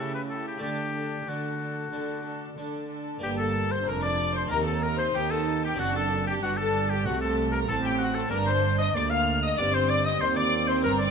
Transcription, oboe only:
0.00 0.13 A4 medium
0.14 0.21 B4 medium
0.30 0.45 A4 medium
0.48 0.62 G4 medium
0.62 1.30 G4 medium
1.28 2.58 F#4 medium
3.23 3.30 G4 medium
3.38 3.73 A4 medium
3.71 3.87 C5 medium
3.88 4.02 A#4 medium
4.02 4.17 D5 medium
4.36 4.43 C5 medium
4.50 4.58 A#4 medium
4.67 4.84 A4 medium
4.83 4.98 A#4 medium
4.98 5.06 C5 medium
5.16 5.32 G4 medium
5.31 5.63 A4 medium
5.65 5.79 G4 medium
5.79 5.95 F#4 loud
5.96 6.26 A4 medium
6.27 6.34 G4 medium
6.43 6.59 F#4 medium
6.57 6.91 A4 medium
6.90 7.07 G4 medium
7.05 7.21 F#4 medium
7.21 7.35 A4 medium
7.52 7.59 A#4 medium
7.68 7.76 A4 medium
7.83 7.97 G4 medium
7.98 8.16 F#4 medium
8.15 8.29 A4 medium
8.30 8.38 A#4 medium
8.47 8.77 C5 medium
8.78 8.96 D#5 medium
8.94 9.11 D5 medium
9.10 9.42 F5 medium
9.42 9.57 D#5 medium
9.58 9.76 D5 loud
9.74 9.91 C5 medium
9.90 10.08 D5 loud
10.06 10.22 D#5 medium
10.21 10.38 C5 medium
10.36 10.69 D5 medium
10.67 10.83 C5 medium
10.83 10.91 A#4 loud
10.98 11.11 D5 medium

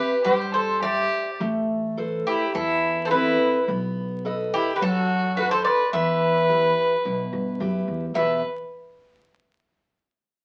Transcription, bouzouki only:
0.00 0.24 B4 medium
0.25 0.51 C5 medium
0.54 0.81 C5 medium
0.83 1.36 D5 medium
2.27 2.53 G4 medium
2.55 3.02 A4 medium
3.05 3.10 C5 medium
3.11 3.64 B4 medium
4.54 4.76 G4 medium
4.76 4.82 B4 medium
4.82 5.40 A4 medium
5.37 5.51 B4 medium
5.51 5.64 C5 loud
5.65 5.93 D5 medium
5.93 7.56 E5 medium
8.15 8.41 E5 medium

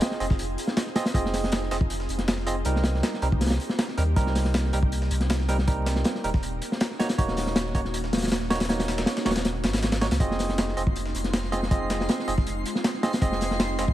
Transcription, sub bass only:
0.20 0.57 F1 medium
1.14 1.70 F1 loud
1.71 2.08 F1 medium
2.09 2.64 F1 medium
2.66 3.02 C2 medium
3.22 3.58 C2 medium
3.98 4.15 D#2 loud
4.16 4.72 C2 loud
4.73 5.09 C2 medium
5.11 6.04 C2 medium
6.24 6.60 D#1 medium
7.18 7.74 D#1 loud
7.75 8.11 D#1 medium
8.13 9.06 D#1 medium
9.26 9.65 D#1 medium
9.64 10.10 G#1 loud
10.11 10.19 C#2 loud
10.20 10.75 F1 loud
10.77 11.13 F1 medium
11.15 12.08 F1 medium
12.28 12.64 F1 medium
13.22 13.77 F1 loud
13.79 13.93 F1 medium

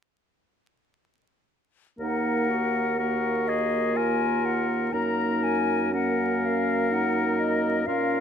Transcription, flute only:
2.01 3.49 F#5 soft
3.48 3.98 D#5 soft
3.96 4.47 G#5 soft
4.45 4.95 F#5 soft
4.93 5.45 A#5 soft
5.43 5.94 G#5 soft
5.94 6.47 F#5 soft
6.46 6.95 F5 soft
6.93 7.41 F#5 soft
7.39 7.88 D#5 soft
7.86 8.20 F5 medium

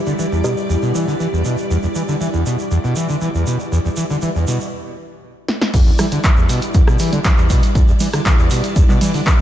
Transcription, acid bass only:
0.07 0.13 D3 loud
0.19 0.26 E3 medium
0.32 0.42 E2 medium
0.44 0.55 B2 medium
0.69 0.76 E2 medium
0.82 0.92 B2 medium
0.95 1.05 E3 medium
1.08 1.14 D3 medium
1.20 1.27 E3 medium
1.33 1.43 E2 medium
1.45 1.56 B2 medium
1.70 1.77 E2 medium
1.83 1.87 E2 medium
1.95 2.03 E3 medium
2.08 2.15 D3 medium
2.21 2.28 E3 loud
2.34 2.44 E2 medium
2.46 2.57 B2 medium
2.71 2.78 E2 loud
2.84 2.94 B2 medium
2.96 3.07 E3 loud
3.09 3.16 D3 loud
3.21 3.29 E3 loud
3.35 3.45 E2 medium
3.47 3.57 B2 medium
3.72 3.79 E2 loud
3.85 3.89 E2 medium
3.97 4.04 E3 medium
4.10 4.17 D3 loud
4.22 4.29 E3 loud
4.35 4.45 E2 medium
4.48 4.58 B2 medium
5.74 5.81 E2 loud
5.87 5.91 E2 medium
5.99 6.06 E3 medium
6.12 6.19 D3 loud
6.24 6.31 E3 loud
6.37 6.47 E2 medium
6.49 6.60 B2 medium
6.74 6.82 E2 loud
6.87 6.97 B2 loud
7.00 7.10 E3 loud
7.13 7.19 D3 loud
7.25 7.32 E3 loud
7.38 7.48 E2 medium
7.50 7.61 B2 medium
7.75 7.82 E2 loud
7.88 7.92 E2 medium
8.01 8.08 E3 medium
8.14 8.20 D3 loud
8.26 8.33 E3 loud
8.39 8.49 E2 medium
8.51 8.62 B2 medium
8.76 8.83 E2 loud
8.89 8.99 B2 loud
9.01 9.12 E3 loud
9.14 9.21 D3 loud
9.27 9.34 E3 loud

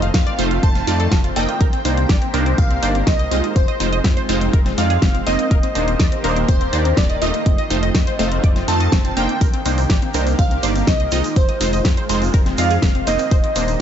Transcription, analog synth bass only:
0.00 0.10 F1 loud
0.14 0.25 F2 medium
0.39 0.59 F1 loud
0.63 0.83 F1 loud
0.88 1.08 F2 loud
1.12 1.32 F1 medium
1.36 1.47 F1 medium
1.61 1.71 C2 loud
1.85 2.05 C2 loud
2.09 2.20 G1 medium
2.34 2.54 C2 loud
2.58 2.79 C2 loud
2.83 3.03 G1 loud
3.07 3.27 C2 medium
3.31 3.42 C2 medium
3.56 3.66 F1 loud
3.80 4.01 F1 loud
4.05 4.15 F2 medium
4.29 4.49 F1 loud
4.53 4.74 F1 loud
4.78 4.98 F2 loud
5.02 5.23 F1 medium
5.27 5.37 F1 medium
5.51 5.61 D#1 loud
5.75 5.96 D#1 loud
6.00 6.10 D#2 medium
6.24 6.45 D#1 loud
6.49 6.69 D#1 loud
6.73 6.93 D#2 loud
6.97 7.18 D#1 medium
7.22 7.32 D#1 medium
7.46 7.56 F1 loud
7.71 7.91 F1 loud
7.95 8.05 F2 medium
8.19 8.40 F1 loud
8.44 8.64 F1 loud
8.68 8.88 F2 loud
8.92 9.13 F1 medium
9.17 9.27 F1 medium
9.41 9.51 C2 loud
9.66 9.86 C2 loud
9.90 10.00 G1 medium
10.14 10.35 C2 loud
10.39 10.59 C2 loud
10.63 10.84 G1 medium
10.88 11.08 C2 medium
11.12 11.22 C2 medium
11.36 11.47 F1 loud
11.61 11.81 F1 loud
11.85 11.95 F2 medium
12.09 12.30 F1 loud
12.34 12.54 F1 loud
12.58 12.79 F2 loud
12.83 13.03 F1 medium
13.07 13.17 F1 medium
13.31 13.42 D#1 loud
13.56 13.76 D#1 loud

